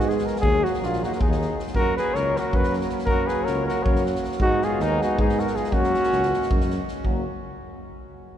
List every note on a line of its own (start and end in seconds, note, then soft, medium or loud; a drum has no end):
0.00 0.18 G#2 loud
0.00 0.45 G#3 loud
0.00 0.45 B3 medium
0.00 0.10 F#4 loud
0.09 0.27 G#4 medium
0.09 snare soft
0.18 snare soft
0.26 0.40 A#4 medium
0.26 snare soft
0.36 snare soft
0.41 0.64 D#2 loud
0.41 1.62 F#3 medium
0.41 1.62 A#3 medium
0.41 0.66 G#4 loud
0.41 kick loud
0.64 0.81 F#4 medium
0.64 snare soft
0.74 snare soft
0.82 1.03 A#1 loud
0.82 1.02 F4 medium
0.82 snare soft
0.93 snare soft
1.03 1.14 D#4 medium
1.03 1.13 F#4 medium
1.03 snare soft
1.12 1.22 F#4 medium
1.12 1.23 A#4 medium
1.12 snare soft
1.21 1.51 D#2 loud
1.21 1.62 D#4 medium
1.21 1.62 G#4 medium
1.21 kick loud
1.32 snare soft
1.42 snare soft
1.59 snare soft
1.67 snare soft
1.75 1.97 F#2 medium
1.75 4.42 F#3 medium
1.75 4.36 A#3 medium
1.75 1.96 F#4 loud
1.75 1.95 A#4 loud
1.75 kick medium
1.97 2.18 G#4 loud
1.97 2.15 B4 loud
1.97 snare soft
2.14 2.36 C#2 loud
2.14 2.41 A#4 loud
2.14 2.39 C#5 loud
2.14 snare soft
2.36 2.57 F#4 medium
2.36 2.57 A#4 medium
2.36 snare soft
2.53 2.83 F#2 loud
2.53 2.75 F#4 medium
2.53 2.74 B4 loud
2.53 kick loud
2.63 snare soft
2.73 snare soft
2.81 snare soft
2.89 snare soft
2.98 snare soft
3.06 3.29 F#2 loud
3.06 3.29 F#4 loud
3.06 3.28 A#4 loud
3.06 kick medium
3.27 3.47 G#4 loud
3.27 3.45 B4 loud
3.27 snare soft
3.43 3.67 A#4 loud
3.43 3.65 C#5 medium
3.43 snare soft
3.48 3.69 C#2 loud
3.65 3.85 F#4 medium
3.65 3.84 A#4 medium
3.65 snare soft
3.83 4.16 F#2 loud
3.83 4.05 A#4 medium
3.83 4.04 C#5 medium
3.83 kick loud
3.96 snare soft
4.06 snare soft
4.15 snare soft
4.24 snare soft
4.31 snare soft
4.40 4.62 G#2 loud
4.40 5.75 G#3 loud
4.40 5.75 B3 medium
4.40 4.65 D#4 medium
4.40 4.65 F#4 loud
4.40 kick loud
4.62 4.83 F4 medium
4.62 4.84 G#4 loud
4.62 snare soft
4.79 5.00 D#2 loud
4.79 5.02 D#4 loud
4.79 5.05 A#4 medium
4.79 snare soft
5.02 5.19 D#4 medium
5.02 5.19 F#4 medium
5.02 snare soft
5.19 5.48 G#2 loud
5.19 5.41 D#4 medium
5.19 5.42 G#4 medium
5.19 kick loud
5.29 snare soft
5.39 5.58 F#4 medium
5.39 5.57 A#4 medium
5.39 snare soft
5.47 snare soft
5.56 5.74 F4 medium
5.56 5.74 G#4 medium
5.56 snare soft
5.64 snare soft
5.72 5.94 F#2 loud
5.72 6.91 F#3 medium
5.72 6.91 A#3 medium
5.72 6.70 C#4 loud
5.72 6.70 F#4 loud
5.72 kick medium
5.83 snare soft
5.94 snare soft
6.03 snare soft
6.12 6.33 C#2 loud
6.12 snare soft
6.22 snare soft
6.33 snare soft
6.42 snare soft
6.50 6.80 F#2 loud
6.50 kick loud
6.61 snare soft
6.70 snare soft
6.88 snare soft
7.04 7.25 F#1 medium
7.04 7.24 F#3 medium
7.04 7.25 A#3 medium
7.04 kick medium